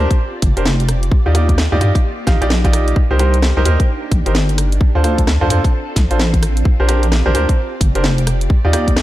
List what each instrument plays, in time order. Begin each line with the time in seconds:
Already playing: string machine C4 F4 G4 D5
0.11 kick, closed hi-hat
0.42 wobble bass G1, kick, open hi-hat
0.57 wobble bass F1, grand piano D4 G4 A#4 C5, closed hi-hat
0.65 snare
0.80 closed hi-hat
0.89 cross-stick, open hi-hat
1.03 closed hi-hat
1.12 string machine A#3, kick
1.26 wobble bass D#2, grand piano D#4 F4 G4 D5
1.35 grand piano D#4 F4 G4 D5, cross-stick, open hi-hat
1.49 kick, closed hi-hat
1.58 cross-stick, snare
1.72 wobble bass D#2, grand piano D#4 F4 G4 D5
1.81 wobble bass G2, grand piano D#4 F4 G4 D5, open hi-hat
1.95 kick, open hi-hat
2.27 wobble bass A#1, grand piano D#4 F4 G4 F5, kick, snare, open hi-hat
2.41 wobble bass A#1, grand piano D#4 F4 G4 D5, closed hi-hat
2.50 snare
2.64 grand piano D#4 F4 G4 D5, kick, closed hi-hat
2.73 cross-stick, open hi-hat
2.88 closed hi-hat
2.96 string machine A#3 D4 D#4, kick
3.11 wobble bass C2, grand piano D#4 G4 A#4 C5
3.19 grand piano D#4 G4 A#4 C5, cross-stick, open hi-hat
3.34 closed hi-hat
3.42 cross-stick, snare
3.57 wobble bass C2, grand piano D#4 G4 A#4 C5
3.65 wobble bass D#2, grand piano D#4 G4 A#4 C5, open hi-hat
3.80 kick, closed hi-hat
4.11 wobble bass A#1, kick, open hi-hat
4.26 wobble bass G1, grand piano D#4 G4 A#4 C5, closed hi-hat
4.35 snare
4.49 closed hi-hat
4.58 cross-stick, open hi-hat
4.72 closed hi-hat
4.81 string machine C4 F4 A4, kick
4.95 wobble bass D2, grand piano D4 F4 A4 C5
5.04 grand piano D4 F4 A4 C5, cross-stick, open hi-hat
5.18 kick, closed hi-hat
5.27 cross-stick, snare
5.41 wobble bass D2, grand piano D4 F4 A4 C5
5.50 wobble bass F2, grand piano D4 F4 A4 C5, open hi-hat
5.64 kick, open hi-hat
5.96 wobble bass C2, kick, snare, open hi-hat
6.11 wobble bass A1, grand piano D4 F4 A4 C5, closed hi-hat
6.20 snare
6.34 kick, closed hi-hat
6.43 cross-stick, open hi-hat
6.57 closed hi-hat
6.65 string machine G4 D5, kick
6.80 wobble bass A#1, grand piano D4 G4 A#4 C5
6.88 grand piano D4 G4 A#4 C5, cross-stick, open hi-hat
7.03 closed hi-hat
7.12 cross-stick, snare
7.26 wobble bass A#1, grand piano D4 G4 A#4 C5
7.35 wobble bass D2, grand piano D4 G4 A#4 C5, open hi-hat
7.49 kick, closed hi-hat
7.81 wobble bass G1, kick, open hi-hat
7.95 wobble bass F1, grand piano D4 G4 A#4 C5, closed hi-hat
8.04 snare
8.18 closed hi-hat
8.27 cross-stick, open hi-hat
8.41 closed hi-hat
8.50 string machine A#3 F4, kick
8.65 wobble bass D#2, grand piano D#4 F4 G4 D5
8.73 grand piano D#4 F4 G4 D5, cross-stick, open hi-hat
8.88 kick, closed hi-hat
8.96 cross-stick, snare